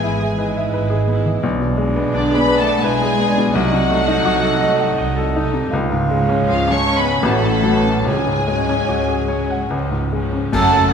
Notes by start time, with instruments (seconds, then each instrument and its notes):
Already playing: grand piano G#2 E3 G#3 B3, viola section G#3 E4, cello section G#3, french horn section G#3, violin section G#4 G#5, flute section E5
0.03 double bass section G#1, bassoon E4, grand piano E4
0.20 grand piano G#4
0.38 viola section G#3 E4, bassoon D#4, grand piano B4
0.57 grand piano E5
0.73 double bass section G#1, grand piano B4
0.90 grand piano G#4
1.07 viola section G#3 E4, grand piano B3
1.26 grand piano E3
1.43 grand piano B1, double bass section B1, bassoon D4
1.60 grand piano B2
1.78 grand piano G#3, viola section G#3 D4
1.96 grand piano B3
2.12 double bass section B1, french horn section D3, cello section D3, violin section D4 D5, grand piano D4, flute section B4
2.31 grand piano G#4
2.35 french horn section B3, cello section B3, violin section B4 B5, flute section G#5
2.48 viola section G#3 D4, grand piano B4
2.59 french horn section A3, cello section A3, violin section A4 A5, flute section F#5
2.67 grand piano D5
2.83 double bass section B1, cello section G#3, french horn section G#3, bassoon E4, violin section G#4 G#5, grand piano B4, flute section D5
3.02 grand piano G#4
3.20 viola section G#3 D4, grand piano B3, bassoon D4
3.38 grand piano B2
3.53 double bass section C2, grand piano C2, french horn section F#3, cello section F#3, viola section A3 D#4, bassoon D#4, violin section F#4 F#5, flute section D#5
3.73 grand piano C3
3.90 grand piano A3, viola section A3 D#4
4.08 grand piano D#4
4.25 double bass section C2, grand piano F#4
4.43 grand piano A4
4.60 viola section A3 D#4, grand piano D#5
4.80 grand piano F#5
4.98 double bass section C2, grand piano D#5
5.17 grand piano A4
5.35 viola section A3 D#4, grand piano D#4
5.53 grand piano C3
5.71 double bass section C#2, grand piano C#2, timpani C#3, bassoon F4
5.92 grand piano G#2
6.10 viola section G#3 C#4, grand piano G#3
6.29 grand piano C#4
6.46 double bass section C#2, french horn section F3, cello section F3, violin section F4 F5, grand piano G#4, flute section C#5
6.68 grand piano C#4, french horn section C#4, violin section C#6
6.72 cello section C#4, violin section C#5, flute section A5
6.86 viola section G#3 C#4, grand piano C#5
6.98 cello section B3, french horn section B3, violin section B4 B5, flute section G#5
7.04 grand piano G#5
7.23 grand piano A1, double bass section A1, cello section A3, french horn section A3, bassoon F#4, violin section A4 A5, flute section F#5
7.27 viola section F#3 C#4
7.35 violin section B5
7.43 grand piano A2, violin section A5
7.51 violin section B5
7.61 grand piano F#3, violin section A5
7.67 viola section F#3 C#4, bassoon B3, violin section B5
7.79 violin section A5
7.84 grand piano C#4
8.04 grand piano C#2, double bass section C#2, timpani C#3, cello section G#3, bassoon C#4, violin section G#4 G#5, flute section C#5
8.09 french horn section G#3
8.27 grand piano G#2
8.48 viola section F#3 C#4, grand piano G#3
8.69 grand piano C#4
8.89 double bass section C#2, grand piano F#4
9.09 grand piano G#4
9.28 viola section F#3 C#4, grand piano C#5
9.50 grand piano F#5
9.70 grand piano C#2, double bass section C#2, viola section F3 C#4
9.91 grand piano G#2
10.13 viola section F3 C#4, grand piano G#3
10.33 grand piano C#4
10.53 double bass section F#1, grand piano F#2, cello section F#2, viola section A3 C#4, french horn section A3, oboe A4, trumpet section A4, violin section F#5 A5, flute section A5, concert bass drum, crash
10.74 viola section F#3 A3